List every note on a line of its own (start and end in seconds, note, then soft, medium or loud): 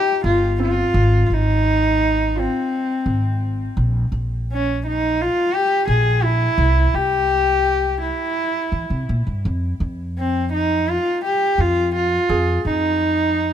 0.00 1.26 D#4 medium
0.00 0.61 F4 medium
0.00 0.22 G4 loud
0.00 0.11 C5 soft
0.00 0.31 D#5 soft
0.24 0.82 G1 medium
0.24 0.57 F4 medium
0.60 1.26 C4 medium
0.60 1.25 F4 medium
0.94 1.23 G#1 medium
1.25 1.35 F4 medium
1.30 2.45 G#1 medium
1.30 2.41 D#4 loud
2.36 4.08 F4 medium
2.40 3.44 C4 medium
3.06 3.64 G#1 medium
3.77 4.06 A#1 medium
4.12 5.27 A#1 medium
4.52 4.83 C#4 medium
4.87 5.23 D#4 loud
5.21 5.56 F4 loud
5.55 5.88 G4 loud
5.88 6.45 A#1 medium
5.88 6.25 G#4 medium
6.23 6.96 E4 loud
6.58 6.87 C2 medium
6.94 8.10 C2 medium
6.94 8.01 G4 loud
8.01 9.05 E4 medium
8.72 8.88 E3 medium
8.90 9.06 C3 medium
9.09 9.25 A#2 medium
9.27 9.43 G2 medium
9.45 9.74 F2 medium
9.80 10.96 F2 medium
10.18 10.50 C4 medium
10.53 10.91 D#4 medium
10.90 11.24 F4 loud
11.25 11.62 G4 medium
11.58 12.16 F2 medium
11.58 11.95 F4 loud
11.95 12.62 F4 medium
12.29 12.58 F2 medium
12.29 13.53 G#4 medium
12.65 13.53 F2 medium
12.65 13.53 D#4 medium